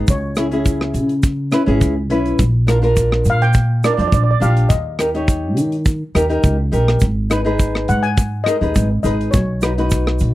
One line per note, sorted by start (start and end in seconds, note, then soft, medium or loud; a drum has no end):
0.08 0.95 C#2 medium
0.08 0.63 C#5 medium
0.08 kick medium
0.08 closed hi-hat medium
0.08 shaker medium
0.36 0.46 C#4 medium
0.36 0.46 E4 medium
0.36 0.46 G#4 medium
0.36 cross-stick medium
0.36 closed hi-hat medium
0.36 shaker medium
0.51 1.12 C#4 medium
0.51 1.13 E4 medium
0.51 1.13 G#4 medium
0.51 closed hi-hat medium
0.65 kick medium
0.65 closed hi-hat medium
0.65 shaker medium
0.81 cross-stick medium
0.94 1.50 C#3 medium
0.94 closed hi-hat medium
0.94 shaker medium
1.09 closed hi-hat medium
1.23 kick loud
1.23 closed hi-hat medium
1.23 shaker medium
1.52 1.61 C#4 medium
1.52 1.61 E4 medium
1.52 1.62 B4 medium
1.52 cross-stick medium
1.52 closed hi-hat medium
1.52 shaker medium
1.66 1.78 G#1 medium
1.66 1.93 C#4 medium
1.66 1.93 E4 medium
1.66 1.93 G#4 medium
1.66 closed hi-hat medium
1.81 2.10 C#2 medium
1.81 kick medium
1.81 closed hi-hat medium
1.81 shaker medium
2.10 2.32 B1 medium
2.10 2.39 C#4 medium
2.10 2.39 E4 medium
2.10 2.39 B4 medium
2.10 closed hi-hat medium
2.26 closed hi-hat medium
2.39 3.27 A#1 medium
2.39 kick medium
2.39 closed hi-hat medium
2.39 shaker medium
2.67 2.76 D4 medium
2.67 2.77 F4 medium
2.67 2.77 A#4 medium
2.67 cross-stick medium
2.67 closed hi-hat medium
2.67 shaker medium
2.82 3.43 D4 medium
2.82 3.43 F4 medium
2.82 3.44 A#4 medium
2.82 closed hi-hat medium
2.97 kick medium
2.97 closed hi-hat medium
2.97 shaker medium
3.12 cross-stick medium
3.25 3.82 A#2 medium
3.25 closed hi-hat medium
3.25 shaker medium
3.30 3.43 F5 medium
3.42 3.81 G5 medium
3.42 closed hi-hat medium
3.53 kick loud
3.53 closed hi-hat medium
3.53 shaker medium
3.84 3.93 D4 medium
3.84 3.93 F4 medium
3.84 3.93 A#4 medium
3.84 3.92 D5 medium
3.84 cross-stick medium
3.84 closed hi-hat medium
3.84 shaker medium
3.94 4.24 D4 medium
3.94 4.00 D5 medium
3.98 4.09 F2 medium
3.98 4.24 F4 medium
3.98 4.25 C5 medium
3.98 4.07 D5 medium
3.98 closed hi-hat medium
4.08 4.13 D5 medium
4.12 4.34 A#1 medium
4.12 4.22 D5 medium
4.12 kick medium
4.12 closed hi-hat medium
4.12 shaker medium
4.23 4.30 D5 medium
4.31 4.37 D5 medium
4.40 4.63 A#1 medium
4.40 4.69 D4 medium
4.40 4.70 F4 medium
4.40 4.70 G4 medium
4.40 4.71 F5 medium
4.40 closed hi-hat medium
4.40 shaker medium
4.57 closed hi-hat medium
4.69 5.57 D#2 medium
4.69 5.23 D#5 medium
4.69 kick loud
4.69 closed hi-hat medium
4.69 shaker loud
4.99 5.08 D#4 medium
4.99 5.08 G4 medium
4.99 5.09 A#4 medium
4.99 cross-stick medium
4.99 closed hi-hat medium
4.99 shaker medium
5.14 5.75 D#4 medium
5.14 5.75 G4 medium
5.14 5.76 C#5 medium
5.14 closed hi-hat medium
5.28 kick medium
5.28 closed hi-hat medium
5.28 shaker loud
5.57 6.01 D#3 medium
5.57 closed hi-hat medium
5.57 shaker medium
5.72 closed hi-hat medium
5.86 kick loud
5.86 closed hi-hat medium
5.86 shaker medium
6.15 6.41 D#2 medium
6.15 6.24 D#4 medium
6.15 6.24 G4 medium
6.15 6.24 A#4 medium
6.15 cross-stick medium
6.15 closed hi-hat medium
6.15 shaker medium
6.29 6.56 D#4 medium
6.29 6.56 G4 medium
6.29 6.56 A#4 medium
6.29 closed hi-hat medium
6.43 6.70 C#2 medium
6.43 kick medium
6.43 closed hi-hat medium
6.43 shaker medium
6.72 6.99 A#1 medium
6.72 7.01 D#4 medium
6.72 7.01 G4 medium
6.72 7.02 A#4 medium
6.72 closed hi-hat medium
6.72 shaker medium
6.88 cross-stick medium
6.88 closed hi-hat soft
7.00 7.90 G#1 medium
7.00 kick medium
7.00 closed hi-hat medium
7.00 shaker medium
7.30 7.39 D#4 medium
7.30 7.40 G#4 medium
7.30 7.40 B4 medium
7.30 cross-stick medium
7.30 closed hi-hat medium
7.30 shaker medium
7.45 8.06 D#4 medium
7.45 8.06 G#4 medium
7.45 8.07 B4 medium
7.45 closed hi-hat medium
7.59 kick medium
7.59 closed hi-hat medium
7.59 shaker medium
7.75 cross-stick medium
7.88 8.45 G#2 medium
7.88 7.96 F#5 medium
7.88 closed hi-hat medium
7.88 shaker medium
8.03 8.47 G#5 medium
8.03 closed hi-hat medium
8.17 kick loud
8.17 closed hi-hat medium
8.17 shaker medium
8.44 8.56 D#4 medium
8.44 8.56 G#4 medium
8.44 9.02 D#5 medium
8.44 cross-stick medium
8.44 closed hi-hat medium
8.44 shaker medium
8.48 8.56 A#4 medium
8.61 8.72 D#2 medium
8.61 8.87 D#4 medium
8.61 8.88 G#4 medium
8.61 8.88 B4 medium
8.61 closed hi-hat medium
8.75 8.98 G#1 medium
8.75 kick medium
8.75 closed hi-hat medium
8.75 shaker medium
9.03 9.27 G#1 medium
9.03 9.33 D#4 medium
9.03 9.33 G#4 medium
9.03 9.34 B4 medium
9.03 9.34 D#5 medium
9.03 closed hi-hat medium
9.03 shaker medium
9.21 closed hi-hat medium
9.31 10.22 B1 medium
9.31 9.86 C#5 medium
9.31 kick loud
9.31 closed hi-hat medium
9.31 shaker loud
9.61 9.71 D#4 medium
9.61 9.72 F#4 medium
9.61 9.72 B4 medium
9.61 cross-stick medium
9.61 closed hi-hat medium
9.61 shaker medium
9.78 10.34 D#4 medium
9.78 10.34 F#4 medium
9.78 10.34 B4 medium
9.78 closed hi-hat medium
9.90 kick medium
9.90 closed hi-hat medium
9.90 shaker loud
10.07 cross-stick medium
10.19 10.34 B2 medium
10.19 closed hi-hat medium
10.19 shaker medium